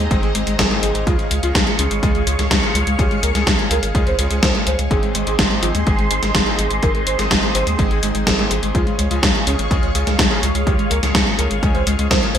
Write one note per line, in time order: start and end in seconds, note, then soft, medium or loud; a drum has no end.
0.00 1.03 G#4 medium
0.00 1.03 C5 medium
0.00 1.03 D#5 medium
0.00 1.05 A#5 medium
0.11 0.20 G#1 loud
0.11 0.29 G#2 medium
0.11 0.29 G#3 medium
0.11 0.19 G#3 medium
0.11 0.29 C4 medium
0.11 0.29 D#4 medium
0.11 0.29 G#4 loud
0.11 kick loud
0.11 closed hi-hat medium
0.23 0.32 G#1 medium
0.23 0.30 G#4 medium
0.23 closed hi-hat soft
0.35 0.44 G#1 medium
0.35 0.64 G#2 medium
0.35 0.64 G#3 medium
0.35 0.43 G#3 medium
0.35 0.64 C4 medium
0.35 0.64 D#4 medium
0.35 0.64 G#4 medium
0.35 closed hi-hat medium
0.47 0.56 G#1 medium
0.47 0.55 G#3 medium
0.47 closed hi-hat soft
0.59 0.68 G#1 loud
0.59 0.66 G#4 medium
0.59 kick loud
0.59 snare loud
0.59 closed hi-hat soft
0.71 1.04 G#2 loud
0.71 1.04 G#3 medium
0.71 0.78 G#3 medium
0.71 1.04 C4 medium
0.71 1.04 D#4 medium
0.71 1.04 G#4 loud
0.71 closed hi-hat soft
0.83 0.92 G#1 medium
0.83 0.90 G#4 medium
0.83 closed hi-hat medium
0.95 1.04 G#1 medium
0.95 1.02 G#3 medium
0.95 closed hi-hat medium
1.06 1.16 C#2 loud
1.06 1.40 C#3 medium
1.06 1.40 G#3 medium
1.06 1.40 C#4 medium
1.06 1.14 F4 medium
1.06 1.40 F4 medium
1.06 12.38 G#4 medium
1.06 1.40 G#4 medium
1.06 4.87 C#5 medium
1.06 4.87 F5 medium
1.06 4.87 C#6 medium
1.06 kick loud
1.06 closed hi-hat soft
1.19 1.26 G#3 medium
1.19 closed hi-hat soft
1.31 1.40 C#2 medium
1.31 1.39 G#3 medium
1.31 closed hi-hat medium
1.43 1.52 C#2 medium
1.43 1.76 C#3 medium
1.43 1.76 G#3 medium
1.43 1.76 C#4 medium
1.43 1.76 F4 medium
1.43 1.51 F4 medium
1.43 1.76 G#4 loud
1.43 closed hi-hat medium
1.55 1.64 C#2 loud
1.55 1.62 G#3 medium
1.55 kick medium
1.55 snare loud
1.55 closed hi-hat medium
1.67 1.75 G#3 medium
1.67 closed hi-hat soft
1.79 1.88 C#2 medium
1.79 2.00 C#3 medium
1.79 2.00 G#3 medium
1.79 1.87 C#4 medium
1.79 2.00 C#4 medium
1.79 2.00 F4 medium
1.79 2.00 G#4 loud
1.79 closed hi-hat medium
1.91 2.00 G#1 medium
1.91 1.99 G#3 medium
1.91 closed hi-hat medium
2.03 2.12 C#2 loud
2.03 2.21 C#3 loud
2.03 2.10 G#3 medium
2.03 2.21 G#3 medium
2.03 2.21 C#4 medium
2.03 2.21 F4 medium
2.03 2.21 G#4 loud
2.03 kick loud
2.03 closed hi-hat soft
2.15 2.24 C#2 medium
2.15 2.23 G#3 medium
2.15 closed hi-hat soft
2.27 2.36 C#2 loud
2.27 2.56 C#3 medium
2.27 2.56 G#3 medium
2.27 2.56 C#4 medium
2.27 2.56 F4 medium
2.27 2.56 G#4 medium
2.27 closed hi-hat medium
2.39 2.48 C#2 medium
2.39 2.47 G#3 medium
2.39 snare soft
2.39 closed hi-hat soft
2.51 2.60 C#2 loud
2.51 2.58 G#3 medium
2.51 kick loud
2.51 snare loud
2.51 closed hi-hat soft
2.63 2.96 C#3 loud
2.63 2.96 G#3 medium
2.63 2.96 C#4 medium
2.63 2.96 F4 medium
2.63 2.96 G#4 loud
2.63 closed hi-hat soft
2.75 2.84 C#2 medium
2.75 2.82 G#3 medium
2.75 closed hi-hat medium
2.87 2.96 C#2 medium
2.87 2.95 G#3 medium
2.87 closed hi-hat medium
2.99 3.08 C#2 loud
2.99 3.32 C#3 medium
2.99 3.32 G#3 medium
2.99 3.32 C#4 medium
2.99 3.32 F4 medium
2.99 3.07 G4 medium
2.99 3.32 G#4 loud
2.99 kick loud
2.99 closed hi-hat medium
3.11 3.19 G#3 medium
3.11 closed hi-hat soft
3.23 3.32 C#2 medium
3.23 3.31 A#4 medium
3.23 closed hi-hat loud
3.35 3.44 C#2 medium
3.35 3.68 C#3 medium
3.35 3.68 G#3 medium
3.35 3.43 G#3 medium
3.35 3.68 C#4 medium
3.35 3.68 F4 medium
3.35 3.68 G#4 medium
3.35 snare soft
3.35 closed hi-hat medium
3.47 3.56 C#2 loud
3.47 3.55 G#3 medium
3.47 kick loud
3.47 snare loud
3.47 closed hi-hat medium
3.59 3.67 G#3 medium
3.59 closed hi-hat soft
3.71 3.80 C#2 medium
3.71 3.92 C#3 medium
3.71 3.92 G#3 medium
3.71 3.92 C#4 medium
3.71 3.92 F4 medium
3.71 3.92 G#4 loud
3.71 3.79 A#4 medium
3.71 closed hi-hat medium
3.83 3.92 G#1 medium
3.83 3.91 G#3 medium
3.83 closed hi-hat medium
3.95 4.04 C#2 loud
3.95 4.13 C#3 medium
3.95 4.13 G#3 medium
3.95 4.03 G#3 medium
3.95 4.13 C#4 medium
3.95 4.13 F4 medium
3.95 4.13 G#4 loud
3.95 kick loud
3.95 closed hi-hat medium
4.07 4.16 C#2 medium
4.07 4.15 C5 medium
4.07 closed hi-hat soft
4.19 4.28 C#2 medium
4.19 4.28 C#3 medium
4.19 4.28 G#3 medium
4.19 4.27 G#3 medium
4.19 4.28 C#4 medium
4.19 4.28 F4 medium
4.19 4.28 G#4 medium
4.19 closed hi-hat medium
4.31 4.40 C#2 medium
4.31 4.49 C#3 medium
4.31 4.49 G#3 medium
4.31 4.39 G#3 medium
4.31 4.49 C#4 medium
4.31 4.49 F4 medium
4.31 4.49 G#4 medium
4.31 closed hi-hat medium
4.43 4.52 C#2 loud
4.43 4.51 C5 medium
4.43 kick loud
4.43 snare loud
4.43 closed hi-hat medium
4.55 4.73 C#3 medium
4.55 4.73 G#3 medium
4.55 4.63 G#3 medium
4.55 4.73 C#4 medium
4.55 4.73 F4 medium
4.55 4.73 G#4 medium
4.55 closed hi-hat soft
4.67 4.76 C#2 medium
4.67 4.75 C5 medium
4.67 closed hi-hat medium
4.79 4.88 C#2 medium
4.79 4.86 G#3 medium
4.79 closed hi-hat medium
4.91 5.00 G#1 loud
4.91 5.24 G#2 medium
4.91 5.24 G#3 medium
4.91 5.24 C4 medium
4.91 5.24 D#4 medium
4.91 4.98 G#4 medium
4.91 5.24 G#4 loud
4.91 8.71 C5 medium
4.91 8.71 D#5 medium
4.91 8.71 C6 medium
4.91 kick loud
4.91 closed hi-hat medium
5.03 5.10 G#3 medium
5.03 closed hi-hat soft
5.15 5.24 G#1 medium
5.15 5.22 G#3 medium
5.15 closed hi-hat loud
5.27 5.36 G#1 medium
5.27 5.60 G#2 medium
5.27 5.60 G#3 medium
5.27 5.60 C4 medium
5.27 5.60 D#4 medium
5.27 5.34 G#4 medium
5.27 5.60 G#4 loud
5.27 closed hi-hat medium
5.39 5.48 G#1 medium
5.39 5.47 G#3 medium
5.39 kick loud
5.39 snare loud
5.39 closed hi-hat medium
5.51 5.58 G#3 medium
5.51 closed hi-hat soft
5.63 5.72 G#1 medium
5.63 5.84 G#2 medium
5.63 5.84 G#3 medium
5.63 5.84 C4 medium
5.63 5.84 D#4 medium
5.63 5.70 F4 medium
5.63 5.84 G#4 loud
5.63 closed hi-hat medium
5.75 5.84 D#2 medium
5.75 5.82 G#3 medium
5.75 closed hi-hat medium
5.87 5.96 G#1 loud
5.87 6.05 G#2 medium
5.87 5.94 G#3 medium
5.87 6.05 G#3 medium
5.87 6.05 C4 medium
5.87 6.05 D#4 medium
5.87 6.05 G#4 loud
5.87 kick loud
5.87 closed hi-hat soft
5.99 6.08 G#1 medium
5.99 6.06 G#3 medium
5.99 closed hi-hat soft
6.11 6.20 G#1 loud
6.11 6.39 G#2 medium
6.11 6.39 G#3 medium
6.11 6.39 C4 medium
6.11 6.39 D#4 medium
6.11 6.39 G#4 medium
6.11 closed hi-hat medium
6.23 6.32 G#1 medium
6.23 6.30 G#3 medium
6.23 snare soft
6.23 closed hi-hat soft
6.35 6.44 G#1 loud
6.35 6.42 G#3 medium
6.35 kick loud
6.35 snare loud
6.35 closed hi-hat soft
6.47 6.80 G#2 medium
6.47 6.80 G#3 medium
6.47 6.80 C4 medium
6.47 6.80 D#4 medium
6.47 6.80 G#4 loud
6.47 closed hi-hat soft
6.59 6.68 G#1 medium
6.59 6.66 G#3 medium
6.59 closed hi-hat medium
6.71 6.80 G#1 medium
6.71 6.78 G#3 medium
6.71 closed hi-hat medium
6.83 6.92 G#1 loud
6.83 7.16 G#2 medium
6.83 7.16 G#3 medium
6.83 7.16 C4 medium
6.83 7.16 D#4 medium
6.83 7.16 G#4 loud
6.83 6.90 A#4 medium
6.83 kick loud
6.83 closed hi-hat medium
6.95 7.03 G#3 medium
6.95 closed hi-hat soft
7.07 7.16 G#1 medium
7.07 7.14 C5 medium
7.07 closed hi-hat medium
7.19 7.28 G#1 medium
7.19 7.52 G#2 medium
7.19 7.26 G#3 medium
7.19 7.52 G#3 medium
7.19 7.52 C4 medium
7.19 7.52 D#4 medium
7.19 7.52 G#4 loud
7.19 snare soft
7.19 closed hi-hat soft
7.31 7.40 G#1 medium
7.31 7.39 G#3 medium
7.31 kick loud
7.31 snare loud
7.31 closed hi-hat soft
7.43 7.50 G#3 medium
7.43 closed hi-hat soft
7.55 7.64 G#1 medium
7.55 7.76 G#2 medium
7.55 7.76 G#3 medium
7.55 7.76 C4 medium
7.55 7.76 D#4 medium
7.55 7.76 G#4 loud
7.55 7.62 C5 medium
7.55 closed hi-hat medium
7.67 7.76 D#2 medium
7.67 7.74 G#3 medium
7.67 closed hi-hat medium
7.79 7.88 G#1 loud
7.79 7.97 G#2 loud
7.79 7.86 G#3 medium
7.79 7.97 G#3 medium
7.79 7.97 C4 medium
7.79 7.97 D#4 medium
7.79 7.97 G#4 loud
7.79 kick loud
7.79 closed hi-hat soft
7.91 8.00 G#1 medium
7.91 7.98 G#4 medium
7.91 closed hi-hat soft
8.03 8.12 G#1 medium
8.03 8.32 G#2 medium
8.03 8.32 G#3 medium
8.03 8.11 G#3 medium
8.03 8.32 C4 medium
8.03 8.32 D#4 medium
8.03 8.32 G#4 medium
8.03 closed hi-hat medium
8.15 8.24 G#1 medium
8.15 8.22 G#3 medium
8.15 closed hi-hat soft
8.27 8.36 G#1 loud
8.27 8.34 G#4 medium
8.27 kick loud
8.27 snare loud
8.27 closed hi-hat soft
8.39 8.72 G#2 loud
8.39 8.72 G#3 medium
8.39 8.46 G#3 medium
8.39 8.72 C4 medium
8.39 8.72 D#4 medium
8.39 8.72 G#4 loud
8.39 closed hi-hat soft
8.51 8.60 G#1 medium
8.51 8.58 G#4 medium
8.51 closed hi-hat medium
8.63 8.72 G#1 medium
8.63 8.70 G#3 medium
8.63 closed hi-hat medium
8.75 8.84 C#2 loud
8.75 9.08 C#3 medium
8.75 9.08 G#3 medium
8.75 9.08 C#4 medium
8.75 8.82 F4 loud
8.75 9.08 F4 medium
8.75 9.08 G#4 medium
8.75 12.38 C#5 medium
8.75 12.38 F5 medium
8.75 12.38 C#6 medium
8.75 kick loud
8.75 closed hi-hat soft
8.87 8.94 G#3 medium
8.87 closed hi-hat soft
8.99 9.08 C#2 medium
8.99 9.06 G#3 medium
8.99 closed hi-hat medium
9.11 9.20 C#2 medium
9.11 9.44 C#3 medium
9.11 9.44 G#3 medium
9.11 9.44 C#4 medium
9.11 9.18 F4 medium
9.11 9.44 F4 medium
9.11 9.44 G#4 loud
9.11 closed hi-hat soft
9.23 9.32 C#2 loud
9.23 9.30 G#3 medium
9.23 kick loud
9.23 snare loud
9.23 closed hi-hat soft
9.35 9.42 G#3 medium
9.35 closed hi-hat soft
9.47 9.56 C#2 medium
9.47 9.68 C#3 medium
9.47 9.68 G#3 medium
9.47 9.54 C#4 medium
9.47 9.68 C#4 medium
9.47 9.68 F4 medium
9.47 9.68 G#4 loud
9.47 closed hi-hat medium
9.59 9.68 G#1 medium
9.59 9.66 G#3 medium
9.59 closed hi-hat soft
9.71 9.80 C#2 loud
9.71 9.89 C#3 medium
9.71 9.78 G#3 medium
9.71 9.89 G#3 medium
9.71 9.89 C#4 medium
9.71 9.89 F4 medium
9.71 9.89 G#4 loud
9.71 kick loud
9.71 closed hi-hat soft
9.83 9.92 C#2 medium
9.83 9.90 G#3 medium
9.83 closed hi-hat soft
9.95 10.04 C#2 medium
9.95 10.24 C#3 medium
9.95 10.24 G#3 medium
9.95 10.24 C#4 medium
9.95 10.24 F4 medium
9.95 10.23 G#4 medium
9.95 closed hi-hat medium
10.06 10.16 C#2 medium
10.06 10.14 G#3 medium
10.06 snare soft
10.06 closed hi-hat soft
10.18 10.28 C#2 loud
10.18 10.26 G#3 medium
10.18 kick loud
10.18 snare loud
10.18 closed hi-hat soft
10.31 10.64 C#3 loud
10.31 10.64 G#3 medium
10.31 10.64 C#4 medium
10.31 10.64 F4 medium
10.31 10.64 G#4 loud
10.31 closed hi-hat soft
10.42 10.52 C#2 medium
10.42 10.50 G#3 medium
10.42 closed hi-hat medium
10.54 10.64 C#2 medium
10.54 10.62 G#3 medium
10.54 closed hi-hat medium
10.67 10.76 C#2 loud
10.67 11.00 C#3 medium
10.67 11.00 G#3 medium
10.67 11.00 C#4 medium
10.67 11.00 F4 medium
10.67 10.74 G4 medium
10.67 11.00 G#4 loud
10.67 kick loud
10.67 closed hi-hat soft
10.79 10.86 G#3 medium
10.79 closed hi-hat soft
10.90 11.00 C#2 medium
10.90 10.98 A#4 medium
10.90 closed hi-hat medium
11.03 11.12 C#2 medium
11.03 11.36 C#3 medium
11.03 11.10 G#3 medium
11.03 11.36 G#3 medium
11.03 11.36 C#4 medium
11.03 11.36 F4 medium
11.03 11.36 G#4 medium
11.03 snare soft
11.03 closed hi-hat soft
11.14 11.24 C#2 loud
11.14 11.22 G#3 medium
11.14 kick loud
11.14 snare loud
11.14 closed hi-hat soft
11.27 11.34 G#3 medium
11.27 closed hi-hat soft
11.38 11.48 C#2 medium
11.38 11.60 C#3 medium
11.38 11.60 G#3 medium
11.38 11.60 C#4 medium
11.38 11.60 F4 medium
11.38 11.60 G#4 loud
11.38 11.46 A#4 medium
11.38 closed hi-hat medium
11.50 11.60 G#1 medium
11.50 11.58 G#3 medium
11.50 closed hi-hat soft
11.62 11.72 C#2 loud
11.62 11.81 C#3 medium
11.62 11.70 G#3 medium
11.62 11.81 G#3 medium
11.62 11.81 C#4 medium
11.62 11.81 F4 medium
11.62 11.81 G#4 loud
11.62 kick loud
11.62 closed hi-hat soft
11.74 11.84 C#2 medium
11.74 11.82 C5 loud
11.74 closed hi-hat soft
11.87 11.96 C#2 medium
11.87 11.96 C#3 medium
11.87 11.94 G#3 medium
11.87 11.96 G#3 medium
11.87 11.96 C#4 medium
11.87 11.96 F4 medium
11.87 11.96 G#4 medium
11.87 closed hi-hat medium
11.99 12.08 C#2 medium
11.99 12.17 C#3 medium
11.99 12.06 G#3 medium
11.99 12.17 G#3 medium
11.99 12.17 C#4 medium
11.99 12.17 F4 medium
11.99 12.17 G#4 medium
11.99 closed hi-hat soft
12.10 12.20 C#2 loud
12.10 12.18 C5 medium
12.10 kick loud
12.10 snare loud
12.10 closed hi-hat soft
12.22 12.38 C#3 medium
12.22 12.30 G#3 medium
12.22 12.38 G#3 medium
12.22 12.38 C#4 medium
12.22 12.38 F4 medium
12.22 12.38 G#4 loud
12.22 closed hi-hat soft
12.34 12.38 C#2 medium
12.34 12.38 C5 medium
12.34 closed hi-hat medium